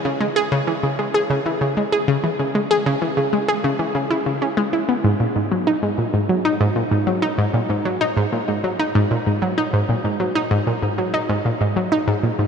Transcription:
X:1
M:4/4
L:1/16
Q:1/4=96
K:C#dor
V:1 name="Synth arpeggio sound" clef=bass
C, G, G C, E, C, G, G C, E, C, G, G C, E, C, | G, G C, E, C, G, G C, E, C, E C, C G, E B, | G,, A,, G,, F, D G,, A,, G,, F, D G,, A,, G,, F, D G,, | A,, G,, F, D G,, A,, G,, F, D G,, A,, G,, F, D G,, A,, |
G,, F, D G,, A,, G,, F, D G,, A,, G,, F, D G,, A,, G,, |]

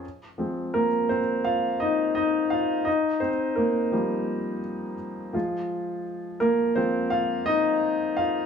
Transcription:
X:1
M:4/4
L:1/8
Q:"Swing 16ths" 1/4=85
K:Fm
V:1 name="Grand piano"
z2 [B,B] [Cc] [Ff] [Ee] [Ee] [Ff] | [Ee] [Cc] [B,B]3 z3 | z2 [B,B] [Cc] [Ff] [Ee]2 [Ff] |]
V:2 name="Grand piano" clef=bass
z [F,A,C] z6 | z3 [F,G,B,]3 z [F,A,F]- | [F,A,F]2 z [F,A,F] z4 |]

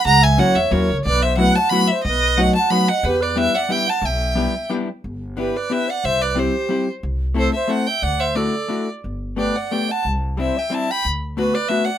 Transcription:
X:1
M:3/4
L:1/16
Q:1/4=180
K:Em
V:1 name="Violin"
^a2 ^g2 f2 e2 ^c3 z | d2 e2 f2 a2 b2 e2 | ^d4 f2 a2 b2 f2 | B2 d2 e2 f2 g2 a2 |
g8 z4 | [K:G] z4 B2 d2 e2 f2 | e2 d2 c6 z2 | z4 c2 e2 f2 g2 |
f2 e2 d6 z2 | z4 d2 f2 g2 a2 | z4 e2 g2 a2 b2 | z4 B2 d2 e2 f2 |]
V:2 name="Flute"
f2 e2 ^c2 c2 ^A3 z | B2 c2 B2 f2 f2 c2 | B4 ^d2 f2 f2 d2 | G2 B2 B2 d2 e2 f2 |
e8 z4 | [K:G] z4 G2 B2 B2 d2 | c2 B2 G6 z2 | z4 A2 c2 c2 e2 |
d2 c2 A6 z2 | z4 B2 d2 d2 f2 | z4 c2 e2 e2 g2 | z4 F2 B2 B2 d2 |]
V:3 name="Hollow-body jazz guitar"
z4 [F,^A,^CEF]2 z2 [F,A,CEF]2 z2 | z4 [F,A,B,EF]2 z2 [F,A,B,EF]2 z2 | z4 [F,A,B,^DF]2 z2 [F,A,B,DF]2 z2 | z4 [G,B,DEG]2 z2 [G,B,DEG]2 z2 |
z4 [G,B,DEG]2 z2 [G,B,DEG]2 z2 | [K:G] z4 [B,DEG]2 z2 [B,DEG]2 z2 | z4 [G,CEG]2 z2 [G,CEG]2 z2 | z4 [A,CEA]2 z2 [A,CEA]2 z2 |
z4 [A,DEF]2 z2 [A,DEF]2 z2 | z4 [A,B,DG]2 z2 [A,B,DG]2 z2 | z4 [G,CDE]2 z2 [G,CDE]2 z2 | z4 [A,B,DF]2 z2 [A,B,DF]2 z2 |]
V:4 name="Upright bass" clef=bass
^C,,6 E,,2 ^D,,2 C,,2 | B,,,8 z4 | B,,,8 z4 | E,,8 z4 |
B,,,8 z4 | [K:G] G,,,8 z4 | C,,8 z4 | C,,8 z4 |
D,,8 z4 | G,,,8 z4 | C,,8 z4 | D,,8 z4 |]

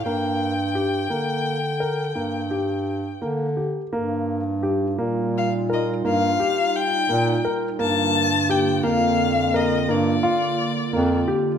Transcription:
X:1
M:11/8
L:1/8
Q:1/4=86
K:Eblyd
V:1 name="Violin"
g8- g z2 | z4 f e f2 g2 z | a2 g f2 e d4 z |]
V:2 name="Grand piano"
B,2 G B,2 B B, G2 B, G | B,2 G B,2 B B, G2 B, B | B,2 G B,2 B B, F2 B, G |]
V:3 name="Ambient pad"
z8 z3 | [G,EF]8- [G,EF]3 | [D,B,F]8- [D,B,F]3 |]
V:4 name="Bass clarinet" clef=bass
G,,3 D,3 G,,3 D,2 | G,,3 B,,3 G,, z2 B,, z | G,,3 F,,3 G,, z2 F,, z |]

